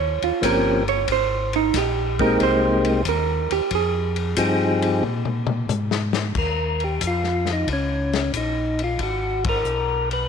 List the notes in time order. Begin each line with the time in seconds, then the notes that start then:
Already playing: D#2 C#5
0.22 D#2 F4, ride
0.41 G1 F3 A#3 C4 C#4 G4 A#4, kick, hi-hat pedal, ride
0.88 C#5, ride
1.08 G#1, kick, ride
1.12 C5
1.53 D#4, ride
1.74 A#1 G4, kick, snare, hi-hat pedal, ride
2.19 G#3 A#3 C4 D#4 G4 A#4, kick, ride
2.40 C2 C5, kick, ride
2.85 ride
3.05 D#2 A#4, kick, hi-hat pedal, ride
3.50 D#2 G4, ride
3.71 F2, kick, ride
3.75 G#4
4.16 ride
4.36 G2 F3 C4 D#4 G4 G#4, kick, hi-hat pedal, ride
4.82 ride
5.02 A#2, mid tom
5.25 mid tom
5.47 mid tom
5.68 G#2, hi-hat pedal, mid tom
5.91 snare
6.13 snare
6.35 D#2 A#4, kick, crash
6.80 ride
6.84 G4
7.01 F2, kick, hi-hat pedal, ride
7.07 F4
7.24 snare
7.46 snare, ride
7.53 D#4
7.67 C#2, kick, ride
7.73 C#4
8.13 snare, ride
8.33 A#1 D#4, kick, hi-hat pedal, ride
8.79 ride
8.84 F4
8.99 G#1, kick, ride
9.03 F#4
9.44 kick, ride
9.49 A#4
9.65 B1, hi-hat pedal
10.11 B4, ride